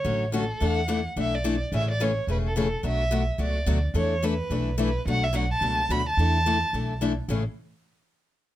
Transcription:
0.00 0.31 C#5 medium
0.04 0.49 A1 medium
0.04 0.23 D3 medium
0.04 0.24 F#3 medium
0.04 0.24 A3 medium
0.04 0.24 C#4 medium
0.04 0.24 F#4 medium
0.32 0.43 D3 medium
0.32 0.44 F#3 medium
0.32 0.44 A3 medium
0.32 0.44 C#4 medium
0.32 0.44 F#4 medium
0.32 0.66 A4 medium
0.60 1.06 E2 medium
0.60 0.79 E3 medium
0.60 0.80 A3 medium
0.60 0.80 D4 medium
0.60 0.80 E4 medium
0.60 0.80 A4 medium
0.65 1.06 F#5 medium
0.88 0.99 E3 medium
0.88 0.99 A3 medium
0.88 0.99 D4 loud
0.88 0.99 E4 medium
0.88 0.99 A4 medium
1.16 1.61 B1 medium
1.16 1.35 E3 medium
1.16 1.35 A3 medium
1.16 1.35 D4 medium
1.16 1.35 E4 medium
1.16 1.36 A4 medium
1.21 1.36 E5 medium
1.35 1.62 D5 medium
1.44 1.55 E3 medium
1.44 1.55 A3 medium
1.44 1.55 D4 medium
1.44 1.55 E4 medium
1.44 1.55 A4 medium
1.72 2.17 A1 medium
1.72 1.91 C#3 medium
1.72 1.91 E3 medium
1.72 1.91 A3 medium
1.72 1.92 C#4 medium
1.72 1.92 G#4 medium
1.72 1.88 E5 medium
1.91 2.04 D5 medium
2.00 2.10 C#3 medium
2.00 2.11 E3 medium
2.00 2.11 A3 medium
2.00 2.11 C#4 medium
2.00 2.11 G#4 medium
2.00 2.29 C#5 medium
2.27 2.72 E1 medium
2.27 2.47 C#3 medium
2.27 2.47 E3 medium
2.27 2.47 A3 medium
2.27 2.47 C#4 medium
2.27 2.47 G#4 medium
2.27 2.38 B4 medium
2.47 2.57 A4 medium
2.56 2.66 C#3 medium
2.56 2.67 E3 medium
2.56 2.67 A3 medium
2.56 2.67 C#4 medium
2.56 2.67 G#4 medium
2.56 2.83 A4 medium
2.83 3.28 B1 medium
2.83 3.02 B2 medium
2.83 3.02 F#3 medium
2.83 3.02 A3 medium
2.83 3.02 D4 medium
2.83 3.03 F#4 medium
2.83 3.26 E5 medium
3.11 3.21 B2 medium
3.11 3.22 F#3 medium
3.11 3.22 A3 medium
3.11 3.22 D4 medium
3.11 3.22 F#4 loud
3.38 3.62 C#2 medium
3.38 3.57 B2 medium
3.38 3.58 F#3 medium
3.38 3.58 A3 medium
3.38 3.58 D4 medium
3.38 3.58 F#4 medium
3.38 3.81 D5 medium
3.66 3.90 D2 medium
3.66 3.77 B2 medium
3.66 3.77 F#3 medium
3.66 3.77 A3 medium
3.66 3.77 D4 medium
3.66 3.78 F#4 medium
3.94 4.39 E2 medium
3.94 4.13 E3 medium
3.94 4.14 A3 medium
3.94 4.13 D4 medium
3.94 4.14 E4 medium
3.94 4.14 A4 medium
3.94 4.26 C#5 medium
4.22 4.33 E3 medium
4.22 4.33 A3 medium
4.22 4.33 D4 medium
4.22 4.34 E4 medium
4.22 4.34 A4 medium
4.22 4.79 B4 medium
4.50 4.95 B1 medium
4.50 4.69 E3 medium
4.50 4.69 A3 medium
4.50 4.69 D4 medium
4.50 4.70 E4 medium
4.50 4.70 A4 medium
4.78 4.88 E3 medium
4.78 4.88 A3 loud
4.78 4.89 D4 medium
4.78 4.89 E4 loud
4.78 4.89 A4 medium
4.78 5.05 B4 medium
5.06 5.50 B1 medium
5.06 5.25 B2 medium
5.06 5.26 F#3 medium
5.06 5.26 A3 medium
5.06 5.26 D4 medium
5.06 5.26 F#4 medium
5.06 5.25 F#5 loud
5.24 5.37 E5 medium
5.33 5.44 B2 medium
5.33 5.44 F#3 medium
5.33 5.44 A3 medium
5.33 5.44 D4 medium
5.33 5.45 F#4 medium
5.33 5.50 F#5 medium
5.51 5.93 A5 loud
5.61 5.85 C#2 medium
5.61 5.80 B2 medium
5.61 5.80 F#3 medium
5.61 5.81 A3 medium
5.61 5.81 D4 medium
5.61 5.81 F#4 medium
5.89 6.13 D2 medium
5.89 6.00 B2 medium
5.89 6.00 F#3 medium
5.89 6.01 A3 medium
5.89 6.01 D4 medium
5.89 6.01 F#4 medium
5.89 6.06 B5 loud
6.09 6.99 A5 loud
6.17 6.62 E2 medium
6.17 6.37 E3 medium
6.17 6.37 A3 medium
6.17 6.37 D4 medium
6.17 6.37 E4 medium
6.17 6.37 A4 medium
6.46 6.56 E3 medium
6.46 6.56 A3 medium
6.46 6.56 D4 medium
6.46 6.56 E4 medium
6.46 6.57 A4 medium
6.73 7.18 B1 medium
6.73 6.92 E3 medium
6.73 6.92 A3 medium
6.73 6.92 D4 medium
6.73 6.93 E4 medium
6.73 6.93 A4 medium
7.01 7.11 E3 medium
7.01 7.12 A3 medium
7.01 7.12 D4 medium
7.01 7.12 E4 medium
7.01 7.12 A4 medium
7.28 7.43 A1 medium
7.28 7.41 A2 medium
7.28 7.42 C#3 medium
7.28 7.42 E3 medium
7.28 7.42 A3 medium
7.28 7.42 C#4 medium
7.28 7.42 G#4 medium

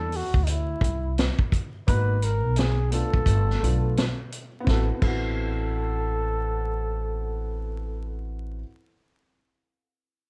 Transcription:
0.00 0.21 E2 medium
0.00 0.18 A4 medium
0.12 open hi-hat soft
0.16 0.45 F#4 medium
0.34 0.74 D2 medium
0.34 kick medium
0.44 0.51 D#4 medium
0.44 closed hi-hat medium
0.49 1.19 E4 medium
0.81 1.27 C2 medium
0.81 kick medium
0.81 closed hi-hat medium
1.18 snare loud
1.18 closed hi-hat medium
1.39 kick medium
1.52 kick medium
1.52 closed hi-hat medium
1.87 2.44 G#1 medium
1.87 2.14 A#3 medium
1.87 2.15 B3 medium
1.87 2.15 D#4 medium
1.87 2.16 F#4 medium
1.87 2.25 B4 loud
1.87 kick medium
1.87 closed hi-hat medium
2.22 2.59 A#4 medium
2.22 closed hi-hat medium
2.44 3.00 B1 medium
2.56 2.93 G#4 medium
2.56 snare loud
2.56 closed hi-hat medium
2.91 3.59 A3 medium
2.91 3.60 B3 medium
2.91 3.61 D4 medium
2.91 3.62 F4 medium
2.91 4.29 A4 loud
2.91 closed hi-hat medium
3.14 3.25 A#1 medium
3.14 kick medium
3.26 3.55 G1 medium
3.26 kick medium
3.26 closed hi-hat medium
3.50 snare soft
3.60 4.07 B1 medium
3.60 4.05 A3 medium
3.60 4.05 B3 medium
3.60 4.06 D4 medium
3.60 4.06 F4 medium
3.60 closed hi-hat medium
3.97 snare loud
3.97 closed hi-hat medium
4.32 closed hi-hat soft
4.60 4.85 B3 medium
4.60 4.87 C4 medium
4.67 4.89 A1 medium
4.67 4.90 E4 medium
4.67 4.90 A4 medium
4.67 kick medium
4.67 snare medium
4.73 4.92 F#4 medium
4.94 8.54 B3 medium
4.99 8.62 A1 medium
4.99 8.59 C4 medium
4.99 8.63 E4 medium
4.99 kick medium
4.99 crash medium
5.03 8.67 F#4 medium
5.03 8.23 A4 medium

